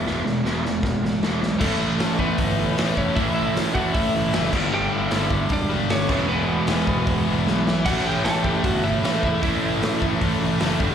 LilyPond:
<<
  \new Staff \with { instrumentName = "Lead electric guitar" } { \time 4/4 \key a \mixolydian \tempo 4 = 154 r1 | <a a'>4. <b b'>2 <cis' cis''>8 | <e' e''>8 <e' e''>4 <fis' fis''>8 <e' e''>4. r8 | <g' g''>8 <e' e''>4. <d' d''>4 <cis' cis''>4 |
<b b'>2. r4 | <fis' fis''>8 <g' g''>8 <a' a''>8 <g' g''>8 <fis' fis''>8 <e' e''>4 <e' e''>8 | <e' e''>2 r2 | }
  \new Staff \with { instrumentName = "Overdriven electric guitar" } { \clef bass \time 4/4 \key a \mixolydian <e gis b>8 <e gis>8 <e gis b>8 <e gis>8 <e gis>8 <e gis>8 <e gis b>8 <e gis>8 | <a, e a cis' e'>1 | <a, e a cis' e'>2.~ <a, e a cis' e'>8 <g, d g b d'>8~ | <g, d g b d'>2.~ <g, d g b d'>8 <e gis b e'>8~ |
<e gis b e'>2.~ <e gis b e'>8 r8 | <a, e a cis' e'>1 | <a, e a cis' e'>2.~ <a, e a cis' e'>8 <g b d' g'>8 | }
  \new Staff \with { instrumentName = "Distorted electric guitar" } { \clef bass \time 4/4 \key a \mixolydian r1 | <a, e a>4. <a, e a>4. <a, e a>4 | <a, e a>4. <a, e a>4. <a, e a>8 <g, d g>8~ | <g, d g>4 <g, d g>4. <g, d g>4 <e, b, e>8~ |
<e, b, e>4 <e, b, e>4. <e, b, e>4 r8 | <a, e a>4. <a, e a>4. <a, e a>4 | <a, e a>4. <a, e a>4. <a, e a>8 <g, d g>8 | }
  \new Staff \with { instrumentName = "Overdriven electric guitar" } { \clef bass \time 4/4 \key a \mixolydian <e, b, e>8 <e, b,>8 <e, b, e>8 <e, b,>8 <e, b,>8 <e, b,>8 <e, b, e>8 <e, b,>8 | <a, e a>4. <a, e a>4. <a, e a>4 | <a, e a>4. <a, e a>4. <a, e a>8 <g, d g>8~ | <g, d g>4 <g, d g>4. <g, d g>4 <e, b, e>8~ |
<e, b, e>4 <e, b, e>4. <e, b, e>4 r8 | <a, e a>4. <a, e a>4. <a, e a>4 | <a, e a>4. <a, e a>4. <a, e a>8 <g, d g>8 | }
  \new Staff \with { instrumentName = "Picked electric bass" } { \clef bass \time 4/4 \key a \mixolydian e,,8 e,,8 e,,8 e,,8 e,,8 e,,8 e,,8 b,,8 | a,,8 a,,8 a,,4 g,,4 a,,8 e,,8 | a,,4 a,,8 a,,8 a,,8 a,,8 fis,,8 g,,8 | g,,8 g,,8 g,,4 e,,4 g,,8 e,,8 |
e,,4 e,,8 e,,8 e,,8 e,,8 b,,4 | a,,8 a,,8 a,,4 g,,4 a,,8 e,,8 | a,,4 a,,8 a,,8 a,,8 a,,8 fis,,8 g,,8 | }
  \new DrumStaff \with { instrumentName = "Drums" } \drummode { \time 4/4 sn8 sn8 sn8 sn8 <bd sn>8 sn8 sn8 sn8 | <cymc bd>4 <hho sn>8 bd8 <hho bd>4 <hho sn>8 bd8 | <hho bd>4 <hho sn>8 bd8 <hho bd>4 <hho sn>8 <cymc bd>8 | r4 <hho sn>8 bd8 <hho bd>4 <hho sn>8 <cymc bd>8 |
r4 <hho sn>8 bd8 <hho bd>4 sn8 sn8 | <cymc hho bd>4 <hho sn>8 bd8 <hho bd>4 <hho sn>8 bd8 | <hho bd>4 <hho sn>8 bd8 <hho bd>4 <hho sn>8 bd8 | }
>>